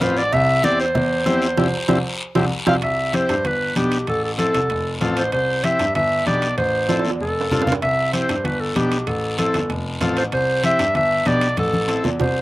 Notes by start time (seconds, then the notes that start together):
0.00 A1 C4 F4 B4 C5, cowbell, high conga, low timbale, short guiro
0.17 D5, short guiro
0.33 C2 E5, cowbell, high conga, long guiro
0.63 E2 C4 E4 G4 D5, cowbell, high conga, short guiro
0.80 C5, short guiro
0.95 E2, cowbell, high conga, low conga, long guiro
1.26 E2 C4 E4 G4, cowbell, high conga, short guiro
1.42 short guiro
1.57 C2 C4 E4 G4, high conga, high timbale, long guiro
1.88 C2 C4 E4 G4, high conga, high timbale, long guiro
2.35 C2 C4 E4 G4, high conga, high timbale, long guiro
2.66 C2 C4 E4 G4 F5, high conga, high timbale, long guiro
2.82 C2 E5, high timbale, long guiro
3.13 C4 E4 G4 C5, high conga, high timbale, short guiro
3.29 G2, high timbale, short guiro
3.45 G1 B4, high conga, high timbale, long guiro
3.76 B1 B3 D4 G4, high conga, high timbale, short guiro
3.92 high timbale, short guiro
4.07 A1 A4, high conga, high timbale, long guiro
4.24 A4
4.38 C4 E4 A4, high conga, high timbale, short guiro
4.54 C2, high timbale, short guiro
4.70 F1, high conga, high timbale, long guiro
5.01 A1 C4 F4 A4, high conga, high timbale, short guiro
5.17 C5, high timbale, short guiro
5.32 C2 C5, high conga, high timbale, long guiro
5.63 C4 E4 G4 E5, high conga, high timbale, short guiro
5.79 G2, high timbale, short guiro
5.95 G1 E5, high conga, high timbale, long guiro
6.26 B1 B3 D4 G4 D5, high conga, high timbale, short guiro
6.42 high timbale, short guiro
6.58 A1 C5, high conga, high timbale, long guiro
6.89 C4 E4 A4, high conga, high timbale, short guiro
6.99 high timbale
7.05 E2, short guiro
7.10 high timbale
7.20 F1 A4, long guiro
7.41 low timbale
7.51 G2 C4 F4 A4, low conga, short guiro
7.62 low timbale
7.66 F5, low conga, short guiro
7.72 low timbale
7.82 C2 E5, high conga, high timbale, long guiro
8.13 C4 E4 G4 C5, high conga, high timbale, short guiro
8.29 G2, high timbale, short guiro
8.44 G1 B4, high conga, high timbale, long guiro
8.60 A4
8.76 B1 B3 D4 G4, high conga, high timbale, short guiro
8.92 high timbale, short guiro
9.07 A1 A4, high conga, high timbale, long guiro
9.38 C4 E4 A4, high conga, high timbale, short guiro
9.54 G1, high timbale, short guiro
9.70 F1, high conga, high timbale, long guiro
10.01 A1 C4 F4 A4, high conga, high timbale, low timbale, short guiro
10.17 C5, high timbale, short guiro
10.32 C2 C5, high conga, high timbale, long guiro
10.63 C4 E4 G4 E5, high conga, high timbale, short guiro
10.79 G2, high timbale, short guiro
10.95 G1 E5, high conga, high timbale, long guiro
11.26 B1 B3 D4 G4 D5, high conga, high timbale, short guiro
11.41 high timbale, short guiro
11.57 A1 A4, high conga, high timbale, long guiro
11.73 high conga
11.88 C4 E4 A4, high timbale, short guiro
12.04 E2, low conga, high timbale, short guiro
12.20 C2 C5, low conga, high timbale, long guiro